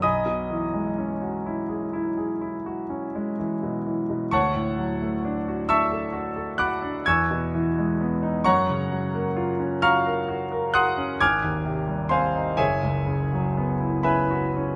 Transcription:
0.02 B1 D#5 G#5 B5 D#6
0.26 B2
0.51 E3
0.74 G#3
0.98 C#4
1.22 F#4
1.46 E4
1.69 G#4
1.93 E4
2.17 G#4
2.41 E4
2.66 F#4
2.90 C#4
3.15 G#3
3.39 E3
3.63 B2
3.86 E3
4.10 B2
4.31 D2 C#5 F#5 A5 C#6
4.54 A2
4.78 F#3
5.02 A3
5.25 D4
5.48 F#4
5.69 D4 E5 A5 C#6 E6
5.92 A4
6.12 F#4
6.36 A4
6.58 F#4 F#5 B5 D6 F#6
6.82 D4
7.06 E2 G#5 C#6 E6 G#6
7.31 B2
7.54 E3
7.78 G#3
8.01 B3
8.23 D#4
8.44 F#2 C#5 F#5 A#5 C#6
8.69 C#3
8.91 F#3
9.15 A#3
9.36 F4
9.60 C#4
9.82 F#4 F5 A#5 C#6 F6
10.06 A#4
10.29 F#4
10.52 A#4
10.74 F#4 F#5 C6 D#6 F#6
10.98 C#4
11.20 G#1 G#5 D6 F6 G#6
11.44 D#2
11.65 C3
11.87 G3
12.09 C4 C5 F5 G#5 C6
12.35 D#4
12.57 F#1 G#4 C#5 E5 G#5
12.83 C#2
13.06 C#3
13.33 F#3
13.57 B3
13.80 E4
14.03 C#4 B4 E5 G#5 B5
14.31 F#4
14.57 C#4

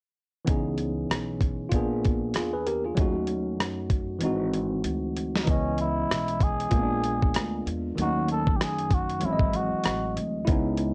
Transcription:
0.45 C#2 E3 B3 C#4, kick, closed hi-hat
0.49 D#4 G#4
0.78 closed hi-hat
1.10 B1, cross-stick, closed hi-hat
1.41 kick, closed hi-hat
1.69 A#1 A#3 B3 F4, kick, closed hi-hat
1.74 D4 G#4
2.04 kick, closed hi-hat
2.34 E2 F4 G#4, cross-stick, closed hi-hat
2.53 G#4 B4
2.67 G4 A#4, closed hi-hat
2.85 F4 G#4
2.95 D#2 F#3 A3 C#4, kick, closed hi-hat
3.00 D#4 F#4
3.27 closed hi-hat
3.59 F#2, cross-stick, closed hi-hat
3.90 kick, closed hi-hat
4.19 G#1 E3 G#3 C4, closed hi-hat
4.23 D#4 F#4
4.54 closed hi-hat
4.84 D2, closed hi-hat
5.17 closed hi-hat
5.36 snare
5.43 E3 G#3 D#4
5.47 C#2 B3 C#4 D#5, kick, closed hi-hat
5.78 E4, closed hi-hat
6.10 B1, cross-stick, closed hi-hat
6.28 closed hi-hat
6.40 G#4, kick, closed hi-hat
6.60 closed hi-hat
6.70 A#1 G#3 A#3 F4, kick, closed hi-hat
6.75 B3 C4
6.83 D4
7.04 closed hi-hat
7.22 kick
7.34 D2, cross-stick, closed hi-hat
7.66 E2, closed hi-hat
7.95 D#2 D#3 F#3 A3, closed hi-hat
8.00 C#4 D#4 F#4
8.28 A4, closed hi-hat
8.47 kick
8.56 G4
8.61 F#2 G#4, cross-stick, closed hi-hat
8.78 closed hi-hat
8.91 F#4, kick, closed hi-hat
9.09 closed hi-hat
9.20 G#1 E3 F#3 G#3, closed hi-hat
9.25 C4 C#4 E4
9.33 D#5
9.39 kick
9.53 F#4, closed hi-hat
9.72 muted upright bass stroke
9.84 A1, cross-stick, closed hi-hat
10.16 D2, closed hi-hat
10.45 C#2 G#3 B3 E4, kick, closed hi-hat
10.49 C#4 D#4
10.77 closed hi-hat

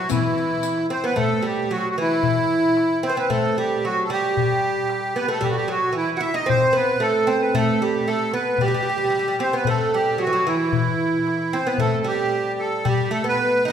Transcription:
0.09 E3 E4, riq, darbuka dum
0.38 riq, darbuka ka
0.63 riq, darbuka tek
0.78 darbuka ka
0.90 C4 C5, riq, darbuka tek
1.04 B3 B4, darbuka ka
1.16 A3 A4, darbuka dum
1.42 G3 G4
1.71 F#3 F#4, darbuka ka
1.90 F#4
1.98 E3 E4
2.23 darbuka dum
2.50 darbuka ka
2.77 darbuka tek
3.03 C4 C5, darbuka ka
3.09 B3
3.17 C4 B4
3.30 A3 A4, darbuka dum
3.44 darbuka ka
3.57 G3 G4, darbuka ka
3.84 F#3 F#4, darbuka ka
4.04 A4
4.09 G3 G4, darbuka tek
4.37 darbuka dum
4.89 darbuka tek
5.15 B3 B4, darbuka ka
5.28 A3 A4
5.41 G3 G4, darbuka dum
5.50 F#4
5.57 G4
5.68 F#3 F#4, darbuka ka
5.92 E3
5.97 E4
6.17 E4 F#4 F#5
6.21 E5, darbuka tek
6.34 D#4 D#5
6.46 C4 C5, darbuka dum
6.73 B3 B4, darbuka ka
7.00 A3 A4, darbuka tek
7.27 C4 C5, darbuka ka
7.41 B4
7.54 A3 A4, darbuka dum
7.67 darbuka ka
7.82 G3 G4
7.93 darbuka ka
8.06 A3 A4, darbuka ka
8.32 B3 B4, darbuka tek
8.58 G3 G4, darbuka dum
8.68 G3
8.74 G3
8.83 G3, darbuka ka
8.90 G3
8.98 G3
9.04 G3
9.10 G3, darbuka tek
9.19 G3
9.25 G3, darbuka ka
9.39 C4 C5, darbuka tek
9.51 B3, darbuka ka
9.56 B4
9.65 A3, darbuka dum
9.69 A4
9.94 G3 G4
10.18 F#3 F#4, darbuka ka
10.27 E3
10.33 F#3
10.45 E3 E4, darbuka tek
10.72 darbuka dum
10.99 darbuka ka
11.27 darbuka tek
11.53 C4 C5, darbuka ka
11.66 B3 B4
11.78 A3 A4, darbuka dum
11.91 darbuka ka
12.01 G3 A4
12.06 G4, darbuka ka
12.32 darbuka ka
12.59 A4
12.85 G3 G4, darbuka dum
13.11 A3 A4, darbuka ka
13.24 B3
13.28 B4
13.37 darbuka tek
13.65 D#4 E4 D#5, darbuka ka

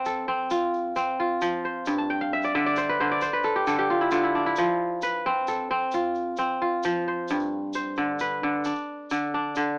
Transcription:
Already playing: F3 C4 D4 B4
0.05 A4, shaker
0.28 C4
0.50 F4, shaker
0.74 shaker
0.96 C4, shaker
1.20 F4
1.41 F3, shaker
1.65 C5
1.86 G2, shaker
1.98 A5
2.10 G5
2.21 F5
2.33 E5
2.42 D5, shaker
2.55 D3 E5
2.66 D5
2.76 C5, shaker
2.89 B4
3.00 D3 C5
3.12 D5
3.21 C5, shaker
3.33 B4
3.43 A4, shaker
3.56 G4
3.67 D3 A4, shaker
3.79 G4
3.90 F4
4.01 E4
4.11 D3 F4, shaker
4.24 E4
4.35 D4
4.46 E4
4.56 F3, shaker
5.02 B4, shaker
5.26 C4
5.47 A4, shaker
5.71 C4
5.91 F4, shaker
6.15 shaker
6.37 C4, shaker
6.62 F4
6.83 F3, shaker
7.08 C5
7.28 G2, shaker
7.40 shaker
7.73 C5, shaker
7.96 D3, shaker
8.19 B4, shaker
8.43 D3
8.64 D4, shaker
8.75 shaker
9.10 D3, shaker
9.34 D4
9.55 D3, shaker

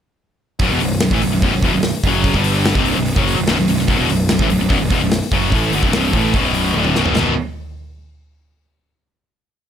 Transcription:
0.59 B0 B1 F#2, kick, open hi-hat
0.71 E1 E2 B2
0.80 B0 B1 F#2, open hi-hat
1.00 B0 B1 F#2, snare, open hi-hat
1.11 A1 A2 E3, kick
1.22 B0 B1 F#2, open hi-hat
1.32 B0 B1 F#2
1.42 B0 B1 F#2, kick, open hi-hat
1.53 B0 B1 F#2
1.62 E1 E2 B2, kick, open hi-hat
1.73 B0 B1
1.77 F#2
1.83 snare, open hi-hat
2.03 F#1 F#2 C#3, kick, open hi-hat
2.08 F#3
2.24 kick, open hi-hat
2.34 G1 G2 D3 G3, kick
2.44 open hi-hat
2.65 snare, open hi-hat
2.75 C1 C2 G2 C3, kick
2.86 open hi-hat
2.97 B0 B1 F#2
3.06 open hi-hat
3.16 F#1 F#2 C#3 F#3, kick
3.27 open hi-hat
3.37 B0 B1 F#2
3.47 B0 B1 F#2, snare, open hi-hat
3.58 B0 B1 F#2
3.68 B0 B1 F#2, open hi-hat
3.79 B0 B1 F#2, snare
3.88 B0 B1 F#2, kick, open hi-hat
3.99 E1 E2 B2
4.09 B0 B1 F#2, open hi-hat
4.29 B0 B1 F#2, snare, open hi-hat
4.39 A1 A2, kick
4.43 E3
4.50 B0 B1 F#2, open hi-hat
4.61 B0 B1 F#2
4.69 B0 B1 F#2, kick, open hi-hat
4.80 B0 B1 F#2
4.90 E1 E2 B2, kick, open hi-hat
5.01 B0 B1 F#2
5.11 snare, open hi-hat
5.32 F#1 F#2 C#3 F#3, kick, open hi-hat
5.52 A1 A2 E3 A3, kick, open hi-hat
5.72 G1 G2 D3, open hi-hat
5.83 B0 B1 F#2, kick
5.93 C1 C2 G2 C3, snare, open hi-hat
6.13 A1 A2 E3, kick, open hi-hat
6.17 A3
6.33 B0, kick, open hi-hat
6.38 B1 F#2 B2
6.54 open hi-hat
6.74 D1 D2 A2 D3, high tom
6.85 mid tom
6.96 B0 B1 F#2 B2, snare
7.06 floor tom
7.15 B0 B1 F#2 B2, snare, floor tom

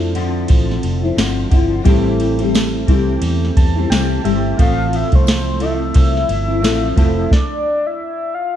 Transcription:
Already playing: F2 F3 C4 D4 E4 A4
0.14 D3 F3 C4 E4, ride
0.48 A1, kick, ride
0.71 snare
0.83 F1, ride
1.03 F3 C4 E4
1.16 G1 D3 F3 C4 E4, snare, ride, tambourine
1.49 G1 D3 F3 C4 E4, kick, ride
1.84 A1 A2 E3 G3 A3 C4 E4, kick, ride
1.88 E4 A4
2.20 ride
2.39 G3 C4 E4, ride
2.55 snare, ride, tambourine
2.87 C2 E3 G3 C4 E4, kick, ride
3.22 E2, ride
3.45 snare
3.57 E2 A5, kick, ride
3.76 G3 C4 E4
3.89 C2 E3 G3 C4 E4 G5, snare, ride, tambourine
4.23 G1 E3 G3 C4 E4 E5, ride
4.57 A1 A2 E3 F3 A3 C4 F5, kick, ride
4.62 A4
4.93 E5, ride
5.12 C2 A3 C4 E4 C5, kick, ride
5.27 snare, ride, tambourine
5.60 F3 A3 C4 E4 E5, ride
5.94 C2, kick, ride
6.17 snare
6.29 G1, ride
6.48 A3 C4 E4
6.61 A1 F3 A3 C4 E4, snare, ride, tambourine
6.96 F1 F3 A3 C4 E4 A4, kick, ride
7.31 D5, kick, snare
7.87 E5
8.34 F5

